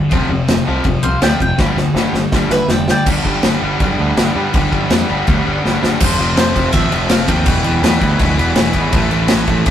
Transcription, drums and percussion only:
0.11 kick loud
0.11 crash medium
0.48 snare loud
0.48 crash medium
0.84 kick loud
0.84 crash medium
1.22 snare loud
1.22 crash medium
1.40 kick medium
1.58 kick loud
1.58 snare medium
1.77 snare medium
1.96 snare medium
2.14 snare medium
2.32 kick loud
2.32 snare medium
2.51 snare medium
2.69 snare loud
2.88 snare loud
3.06 kick loud
3.06 crash loud
3.06 crash medium
3.25 kick medium
3.43 snare loud
3.43 crash medium
3.80 kick loud
3.80 crash medium
4.17 snare loud
4.17 crash medium
4.54 kick loud
4.54 crash medium
4.73 kick medium
4.90 snare loud
4.90 crash medium
5.27 kick loud
5.27 crash medium
5.66 snare medium
5.84 snare loud
6.00 kick loud
6.00 crash loud
6.00 crash medium
6.19 crash medium
6.37 snare loud
6.37 crash medium
6.56 kick medium
6.56 crash medium
6.74 kick loud
6.74 crash medium
6.92 crash medium
7.09 snare loud
7.09 crash medium
7.28 kick medium
7.28 crash medium
7.46 kick loud
7.46 crash loud
7.64 crash medium
7.84 snare loud
7.84 crash loud
8.01 kick medium
8.01 crash medium
8.19 kick loud
8.19 crash medium
8.39 crash medium
8.55 snare loud
8.55 crash medium
8.73 kick medium
8.73 crash medium
8.92 kick loud
8.92 crash medium
9.11 crash medium
9.28 snare loud
9.28 crash medium
9.47 kick medium
9.47 crash medium
9.66 kick loud
9.66 crash medium

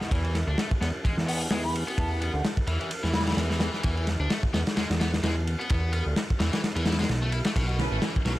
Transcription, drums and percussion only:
0.01 snare soft
0.11 kick loud
0.11 ride medium
0.24 ride soft
0.35 snare soft
0.35 ride medium
0.58 snare loud
0.58 ride medium
0.71 kick medium
0.81 snare soft
0.81 ride medium
1.05 kick loud
1.05 ride medium
1.18 snare soft
1.28 open hi-hat medium
1.41 ride soft
1.51 snare loud
1.51 ride medium
1.75 ride medium
1.88 ride soft
1.98 kick loud
1.98 ride medium
2.22 ride medium
2.45 snare loud
2.45 ride medium
2.57 kick loud
2.67 ride medium
2.81 ride soft
2.91 ride medium
3.04 snare soft
3.14 snare loud
3.14 ride medium
3.20 snare medium
3.20 ride medium
3.27 snare medium
3.27 ride medium
3.32 snare medium
3.32 ride medium
3.37 snare loud
3.37 ride medium
3.50 snare medium
3.60 snare loud
3.60 ride medium
3.74 snare soft
3.83 kick loud
3.83 ride medium
3.97 ride soft
4.07 snare soft
4.07 ride medium
4.30 snare loud
4.30 ride medium
4.43 kick medium
4.54 snare loud
4.54 ride medium
4.67 snare loud
4.67 ride medium
4.77 snare loud
4.77 ride medium
4.91 snare loud
4.91 ride medium
5.01 snare loud
5.01 ride medium
5.14 snare loud
5.14 ride medium
5.23 snare loud
5.23 ride medium
5.47 ride medium
5.61 ride soft
5.70 kick loud
5.70 ride medium
5.93 ride medium
6.16 snare loud
6.16 ride medium
6.30 kick medium
6.40 snare loud
6.40 ride medium
6.53 snare loud
6.53 ride medium
6.64 snare loud
6.64 ride medium
6.76 ride medium
6.86 snare medium
6.86 ride medium
6.92 snare medium
6.92 ride medium
6.99 snare medium
6.99 ride medium
7.04 snare medium
7.04 ride medium
7.09 snare medium
7.09 ride medium
7.32 ride medium
7.45 snare loud
7.45 ride medium
7.56 kick loud
7.56 ride medium
7.69 ride soft
7.79 snare soft
7.79 ride medium
7.79 low conga medium
8.02 snare loud
8.02 ride medium
8.16 kick loud
8.25 snare soft
8.25 ride medium

